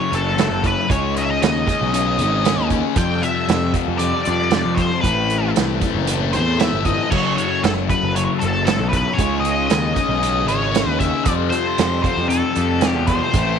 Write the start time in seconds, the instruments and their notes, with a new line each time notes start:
Already playing: distorted electric guitar F#2 C#3, tonewheel organ F#3 E4 A4, lead electric guitar C#5
0.10 picked electric bass F#1, distorted electric guitar C#3 F#3, closed hi-hat
0.15 lead electric guitar A4
0.36 distorted electric guitar F#2 C#3 F#3, snare, closed hi-hat
0.41 lead electric guitar A4
0.51 picked electric bass F#1
0.62 distorted electric guitar C#3 F#3, kick, closed hi-hat
0.67 lead electric guitar B4
0.88 picked electric bass C#2, distorted electric guitar C#3 G#3, tonewheel organ G#3 D#4 C#5, lead electric guitar C#5, kick, closed hi-hat
0.92 distorted electric guitar C#4
1.17 lead electric guitar D#5, closed hi-hat
1.21 lead electric guitar E5
1.31 lead electric guitar D#5
1.42 picked electric bass D#2, lead electric guitar D#5, snare, closed hi-hat
1.65 distorted electric guitar G#3 C#4, kick, closed hi-hat
1.81 picked electric bass B1
1.92 distorted electric guitar C#3 G#3 C#4, closed hi-hat
2.19 picked electric bass G#1, distorted electric guitar G#3 C#4, closed hi-hat
2.44 distorted electric guitar C#3 G#3 C#4, snare, closed hi-hat
2.57 picked electric bass D#2
2.70 distorted electric guitar G#3 C#4, kick, closed hi-hat
2.95 distorted electric guitar F2 C3 F3, picked electric bass F2, tonewheel organ G3 F4 A4, lead electric guitar G5, kick, closed hi-hat
3.23 lead electric guitar E5, closed hi-hat
3.49 picked electric bass F2, snare, closed hi-hat
3.73 distorted electric guitar C3 F3, kick, closed hi-hat
3.88 picked electric bass F2
3.98 distorted electric guitar F2 C3, lead electric guitar D5, closed hi-hat
4.02 distorted electric guitar F3
4.25 picked electric bass F2, distorted electric guitar C3 F3, closed hi-hat
4.51 distorted electric guitar F2 C3 F3, snare, closed hi-hat
4.66 picked electric bass F2
4.75 distorted electric guitar F3, lead electric guitar C5, kick, closed hi-hat
4.80 distorted electric guitar C3
5.01 picked electric bass A1, distorted electric guitar A2 E3, tonewheel organ A3 B4, lead electric guitar B4, kick, closed hi-hat
5.05 distorted electric guitar A3, tonewheel organ C4
5.30 closed hi-hat
5.56 picked electric bass C2, snare, closed hi-hat
5.81 distorted electric guitar E3 A3, kick, closed hi-hat
5.95 picked electric bass F#1
6.06 distorted electric guitar A2 E3 A3, closed hi-hat
6.32 picked electric bass E2, distorted electric guitar E3 A3, lead electric guitar C5, closed hi-hat
6.58 distorted electric guitar A2 E3 A3, lead electric guitar E5, snare, closed hi-hat
6.73 picked electric bass G1
6.84 distorted electric guitar E3 A3, lead electric guitar D#5, kick, closed hi-hat
7.10 picked electric bass F#1, distorted electric guitar F#2 C#3 F#3, tonewheel organ F#3 E4 A4, lead electric guitar C#5, kick, crash
7.37 lead electric guitar C#5, closed hi-hat
7.63 picked electric bass F#1, lead electric guitar A4, snare, closed hi-hat
7.88 distorted electric guitar C#3 F#3, lead electric guitar B4, kick, closed hi-hat
8.03 picked electric bass F#1
8.14 distorted electric guitar F#2 C#3 F#3, lead electric guitar C#5, closed hi-hat
8.39 picked electric bass F#1, distorted electric guitar F#3, lead electric guitar A4, closed hi-hat
8.44 distorted electric guitar C#3
8.65 distorted electric guitar F#2 C#3 F#3, lead electric guitar A4, snare, closed hi-hat
8.80 picked electric bass B1
8.89 distorted electric guitar F#3, lead electric guitar B4
8.93 distorted electric guitar C#3, kick, closed hi-hat
9.13 distorted electric guitar C#3, lead electric guitar C#5
9.18 picked electric bass C#2, distorted electric guitar G#3 C#4, tonewheel organ G#3 D#4 C#5, kick, closed hi-hat
9.40 lead electric guitar D#5
9.45 closed hi-hat
9.67 picked electric bass D#2, lead electric guitar D#5, closed hi-hat
9.71 snare
9.95 distorted electric guitar G#3 C#4, kick, closed hi-hat
10.09 picked electric bass B1
10.21 distorted electric guitar C#3 G#3 C#4, closed hi-hat
10.46 picked electric bass G#1, distorted electric guitar G#3 C#4, lead electric guitar C#5, closed hi-hat
10.72 distorted electric guitar C#3 G#3 C#4, snare, closed hi-hat
10.86 picked electric bass D#2
10.98 distorted electric guitar C#4, lead electric guitar E5, kick, closed hi-hat
11.02 distorted electric guitar G#3
11.23 distorted electric guitar F2 C3 F3, picked electric bass F2, tonewheel organ G3 A4, lead electric guitar D5, kick, closed hi-hat
11.28 tonewheel organ F4
11.50 lead electric guitar C5, closed hi-hat
11.78 picked electric bass F2, snare, closed hi-hat
12.02 distorted electric guitar C3 F3, lead electric guitar C5, kick, closed hi-hat
12.17 picked electric bass F2
12.28 distorted electric guitar F2 C3 F3, lead electric guitar A4, closed hi-hat
12.54 picked electric bass F2, distorted electric guitar C3 F3, closed hi-hat
12.81 distorted electric guitar F2 C3 F3, snare, closed hi-hat
12.88 lead electric guitar G4
12.96 picked electric bass E2
13.07 distorted electric guitar C3 F3, lead electric guitar C5, kick, closed hi-hat
13.34 picked electric bass A1, distorted electric guitar A2 E3 A3, tonewheel organ A3 C4 B5, kick, closed hi-hat